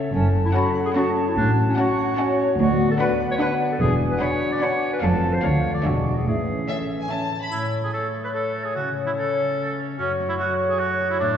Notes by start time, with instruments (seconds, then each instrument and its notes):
Already playing: harp C#3 A3 E4 A4 C#5 E5, french horn section C#4 A4, flute section E5
0.13 double bass section F#1, harp F#2, cello section F#2, french horn section C#4 A4, clarinet C#4, flute section A5
0.34 harp A3
0.45 clarinet E4
0.54 viola section C#4, clarinet F#4, harp C#5, violin section F#5 A5, flute section B5
0.75 harp F#5
0.85 clarinet G#4
0.95 viola section C#4, clarinet F#4, harp A4, violin section F#5 A5, flute section A5
1.16 harp C#5
1.27 clarinet E4
1.36 double bass section A1, harp A2, cello section A2, clarinet D4, french horn section F#4
1.57 harp A3
1.69 clarinet C#4
1.77 viola section C#4, clarinet F#4, harp C#5, violin section F#5 A5, flute section F#5
1.98 harp F#5
2.17 viola section C#4, harp A4, flute section C#5, violin section F#5 A5
2.39 harp C#5
2.59 double bass section D2, cello section D2, harp D3, french horn section B3, clarinet F#4, flute section D5
2.79 harp B3
2.91 clarinet A4
3.00 viola section D4, clarinet B4, harp D5, flute section D5, violin section F#5 B5
3.20 harp F#5
3.31 clarinet C#5
3.40 viola section D4, harp B4, clarinet B4, flute section F#5, violin section F#5 B5
3.60 harp D5
3.72 clarinet A4
3.80 double bass section E1, cello section E2, harp E3, french horn section D4 F#4, clarinet G#4, flute section G#5
4.01 harp B3
4.11 clarinet B4
4.21 viola section D4, clarinet C#5, harp D5, violin section F#5 B5
4.41 harp F#5
4.52 clarinet D5
4.61 viola section D4, harp B4, clarinet C#5, violin section F#5 B5, flute section G#5
4.82 harp D5
4.93 clarinet B4
5.01 double bass section F1, cello section F2, harp F3, french horn section C4 F4, viola section C4, clarinet A4, violin section F5 A5, flute section A5
5.23 harp F4 C5
5.33 clarinet C5
5.43 double bass section D2, cello section D2, harp D3, french horn section A3, viola section D4, clarinet C#5, violin section F5 A5, flute section F5
5.65 harp F4 D5
5.74 clarinet D5
5.84 double bass section E1, cello section E2, harp E3, french horn section G#3 D4, viola section D4, clarinet F#4, violin section E5 G#5, flute section F#5
6.06 harp E4 D5
6.16 clarinet G#4
6.27 double bass section A1, harp A2, cello section A2, french horn section E3 C#4, clarinet G#4, flute section E5
6.49 harp A3
6.68 viola section C#4, clarinet A4, harp C#5, violin section E5
6.90 harp E5
7.00 violin section G#5
7.10 viola section C#4, harp A4, violin section E5 A5
7.32 harp C#5
7.41 violin section B5
7.52 harp A2, clarinet A3, oboe E4, flute section C#5, triangle
7.73 harp A3
7.84 oboe G#4
7.93 oboe A4, harp C#5
8.14 harp E5
8.24 oboe B4
8.34 oboe A4, harp A4
8.55 harp C#5
8.64 oboe G#4
8.75 harp C#3, clarinet C#4, oboe F#4
8.97 harp A3
9.06 oboe E4
9.16 oboe A4, harp C#5
9.38 harp E5
9.58 harp A4
9.78 harp C#5
9.98 harp F#2, oboe C#4, clarinet F#4, flute section C#5
10.20 harp A3
10.29 oboe E4
10.39 oboe F#4, harp C#5
10.60 harp A4
10.69 oboe G#4
10.79 oboe F#4, harp C#5
11.00 harp C#4
11.10 oboe E4
11.20 harp A2, clarinet A3, oboe D4